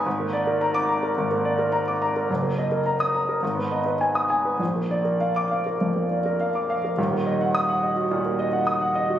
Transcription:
\new Staff \with { instrumentName = "Grand piano" } { \time 4/4 \key ees \minor \tempo 4 = 106 << { r4 r16 d'''8 r2 r16 | r4 r16 ees'''8 r4. ees'''8 r16 | r4 r16 d'''8 r2 r16 | r4 ees'''8 r2 r8 | } \\ { aes,,16 bes16 d''16 bes'16 bes''8 bes''16 bes'16 aes,,16 bes16 d''16 bes'16 bes''16 d'''16 bes''16 bes'16 | ges,,16 bes16 ees''16 bes'16 bes''8 bes''16 bes'16 aes,,16 ces'16 ees''16 ces''16 aes''8 aes''16 ces''16 | bes,,16 bes16 d''16 bes'16 f''8 f''16 bes'16 f,16 bes16 d''16 bes'16 f''16 d'''16 f''16 bes'16 | <ees,, ees,>16 bes16 ees''16 ges''8 ges''16 ees''16 ges'16 bes,16 bes16 ees''16 ges''16 ees'''16 ges''16 ees''16 ges'16 | } >> }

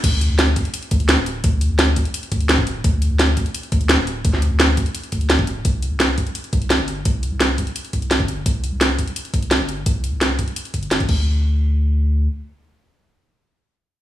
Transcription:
<<
  \new Staff \with { instrumentName = "Sub bass" } { \clef bass \time 4/4 \key c \major \tempo 4 = 171 d,8. d,8. d,16 r8. d,8. d,,8. | d,8. d,8. d,16 r8. d,8. d,,8. | d,8. d,8. d,16 r8. d,8. d,,8. | d,8. d,8. d,16 r8. d,8. d,,8. |
c,8. c,8. c,16 r8. c,8. g,,8. | c,8. c,8. c,16 r8. c,8. g,,8. | c,8. c,8. c,16 r8. c,8. g,,8. | c,8. c,8. c,16 r8. g,,8. g,,16 d,8~ |
d,2. r4 | r1 | }
  \new DrumStaff \with { instrumentName = "Drums" } \drummode { \time 4/4 <cymc hh bd>8 hh8 <hh sn>8 <hh bd>16 hh16 hh16 hh16 <hh bd>16 hh16 <hh sn>8 hh8 | <hh bd>8 hh8 <hh sn>8 <hh bd>16 hh16 hh16 hh16 <hh bd>16 hh16 <hh sn>16 bd16 hh8 | <hh bd>8 hh8 <hh sn>8 <hh bd>16 hh16 hh16 hh16 <hh bd>16 hh16 <hh sn>8 hh8 | <hh bd>16 sn16 hh8 <hh sn>8 <hh bd>16 hh16 hh16 hh16 <hh bd>16 hh16 <hh sn>16 bd16 hh8 |
<hh bd>8 hh8 <hh sn>8 <hh bd>16 hh16 hh16 hh16 <hh bd>16 hh16 <hh sn>8 hh8 | <hh bd>8 hh8 <hh sn>8 <hh bd>16 hh16 hh16 hh16 <hh bd>16 hh16 <hh sn>16 bd16 hh8 | <hh bd>8 hh8 <hh sn>8 <hh bd>16 hh16 hh16 hh16 <hh bd>16 hh16 <hh sn>8 hh8 | <hh bd>8 hh8 <hh sn>8 <hh bd>16 hh16 hh16 hh16 <hh bd>16 hh16 <hh sn>16 <hh bd>16 <cymc bd>8 |
r4 r4 r4 r4 | r4 r4 r4 r4 | }
>>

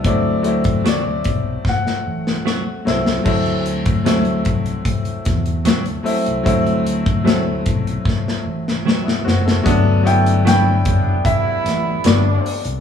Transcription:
<<
  \new Staff \with { instrumentName = "Grand piano" } { \time 4/4 \key d \mixolydian \tempo 4 = 75 d''4 d''4 fis''4. r8 | r1 | r1 | r8 g''8 g''4 e''4 d''8. r16 | }
  \new Staff \with { instrumentName = "Clean electric guitar" } { \time 4/4 \key d \mixolydian r4 <fis a c' fis'>8 r4. <fis a c' fis'>8 r8 | r4 <fis a c' fis'>8 r4. <fis a c' fis'>8 r8 | r4 <fis a c' fis'>8 r4. <fis a c' fis'>8 r8 | r4 <fis b d' fis'>8 r4. <fis b d' fis'>8 r8 | }
  \new Staff \with { instrumentName = "Grand piano" } { \time 4/4 \key d \mixolydian r1 | r1 | r2. r16 <b e'>16 <c' fis'>16 <e' a'>16~ | <e' a'>16 r2. r8. | }
  \new Staff \with { instrumentName = "Grand piano" } { \time 4/4 \key d \mixolydian <fis a c' e'>8 <fis a c' e'>4. r4. <fis a c' e'>8 | <fis a c' e'>8. r16 <fis a c' e'>4. r4 <fis a c' e'>8 | <fis a c' e'>8. r16 <fis a c' e'>4. r4. | <fis a b d'>8 <fis a b e'>4. r2 | }
  \new Staff \with { instrumentName = "Horn section" } { \time 4/4 \key d \mixolydian r1 | r1 | r1 | r8 <fis b d'>8 <a c' e'>8 <fis b d'>8 <g b e'>4 <g b d'>8. r16 | }
  \new Staff \with { instrumentName = "Fingered electric bass" } { \clef bass \time 4/4 \key d \mixolydian d,4. b,,8 r8 a,,8 r8 c,8 | d,4. c,8 r8 e,8 d,8 r16 c,16 | d,4. b,,8 r8 a,,8 r8 fis,,8 | g,,4. fis,,8 r8 a,,8 g,,8 r16 c,16 | }
  \new DrumStaff \with { instrumentName = "Drums" } \drummode { \time 4/4 <hh bd>8 hh16 <hh bd>16 <hh sn>8 <hh bd>8 <bd sn>16 sn8 sn16 sn8 sn16 sn16 | <cymc bd>16 hh16 hh16 <hh bd>16 <hh sn>16 hh16 <hh bd>16 hh16 <hh bd>16 hh16 <hh bd sn>16 hh16 <hh sn>16 hh16 hho16 hh16 | <hh bd>16 hh16 hh16 <hh bd>16 <hh sn>8 <hh bd>16 hh16 <bd sn>16 sn8 sn16 sn16 sn16 sn16 sn16 | <hh bd>8 hh16 hh16 <hh sn>8 <hh bd>8 <hh bd>8 <hh sn>8 <hh sn>8 hho16 hh16 | }
>>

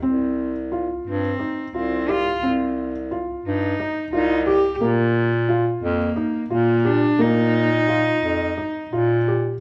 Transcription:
<<
  \new Staff \with { instrumentName = "Felt piano" } { \time 7/8 \key c \minor \tempo 4 = 88 c'4 f'4 ees'8 f'8 g'8 | c'4 f'4 ees'8 f'8 g'8 | bes4 f'4 ees'8 f'8 g'8 | bes4 f'4 ees'8 f'8 g'8 | }
  \new Staff \with { instrumentName = "Cello" } { \time 7/8 \key c \minor r4. c'4 c'8 f'8 | r4. ees'4 ees'8 g'8 | r4. bes4 bes8 d'8 | ees'2. r8 | }
  \new Staff \with { instrumentName = "Bass clarinet" } { \clef bass \time 7/8 \key c \minor c,4. g,8 r8 c,4 | c,4. g,8 r8 c,4 | bes,4. f,8 r8 bes,4 | bes,4. f,8 r8 bes,4 | }
>>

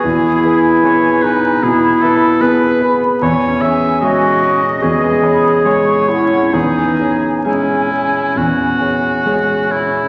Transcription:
<<
  \new Staff \with { instrumentName = "Flute section" } { \time 4/4 \key cis \minor \tempo 4 = 74 gis''2 b''4 b''4 | gis''2 gis''8 b''8 cis'''8 fis''8 | gis''2.~ gis''8 r8 | }
  \new Staff \with { instrumentName = "Oboe" } { \time 4/4 \key cis \minor gis'4 cis''8 b'8 gis'8 a'8 b'8 r8 | cis''8 e''8 dis''2 cis''4 | gis'4 e'4 fis'4. e'8 | }
  \new Staff \with { instrumentName = "Grand piano" } { \time 4/4 \key cis \minor e,8 <gis' b'>8 <b gis' b'>8 <gis' b'>8 b,8 <e' b'>8 <b gis' b'>8 <gis' b'>8 | e,8 <gis' cis''>8 <gis gis' cis''>8 <gis' cis''>8 e,8 <gis' cis''>8 <gis gis' cis''>8 <gis' cis''>8 | e,8 <gis' cis''>8 <gis gis' cis''>8 <gis' cis''>8 e,8 <gis' cis''>8 <gis gis' cis''>8 <gis' cis''>8 | }
  \new Staff \with { instrumentName = "Clarinet" } { \time 4/4 \key cis \minor e'4. dis'8 e'4. r8 | r4 fis'4 gis'4. e'8 | dis'4 cis'2 r4 | }
  \new Staff \with { instrumentName = "Harp" } { \time 4/4 \key cis \minor <e b b' gis''>4 \tuplet 3/2 { b'4 b8~ b8 b8 gis'8 b'8 gis'8 b8 } | \tuplet 3/2 { e8 cis'8 gis'8 cis''8 gis'8 cis'8 e8 gis8 gis'8 cis''8 gis'8 cis'8 } | e4 \tuplet 3/2 { cis''4 cis'8 } e4 \tuplet 3/2 { cis''4 cis'8 } | }
>>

